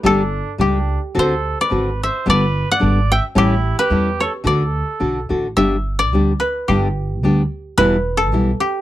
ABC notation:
X:1
M:2/4
L:1/16
Q:"Swing" 1/4=109
K:D
V:1 name="Koto"
A4 G3 z | =c3 d3 e2 | d3 f3 g2 | G3 B3 c2 |
d6 z2 | [K:G] e3 d3 B2 | G6 z2 | B3 A3 G2 |]
V:2 name="Trumpet"
D4 D3 z | A3 B3 =c2 | B3 d3 e2 | E3 G3 A2 |
A6 z2 | [K:G] z8 | z8 | z8 |]
V:3 name="Nylon-string guitar"
[G,A,DG]2 z2 [G,A,DG]2 z2 | [D,=CFA]2 z2 [D,CFA]2 z2 | [G,B,DA]2 z2 [G,B,DA]2 z2 | [A,,G,CEA]2 z2 [G,CEA]2 z2 |
[D,DFA]2 z2 [D,DFA]2 [D,DFA]2 | [K:G] [G,,D,G,B,DG]2 z2 [G,B,DG]2 z2 | [G,,D,G,B,DG]2 z2 [G,B,DG]2 z2 | [E,,B,,E,G,B,E]2 z2 [E,G,B,E]2 z2 |]
V:4 name="Upright bass" clef=bass
G,,,4 C,,4 | D,,4 ^G,,,4 | G,,,4 ^G,,,4 | A,,,4 E,,4 |
D,,4 B,,,2 A,,,2 | [K:G] G,,,4 D,,2 z2 | G,,,4 D,,2 z2 | E,,,4 B,,,2 z2 |]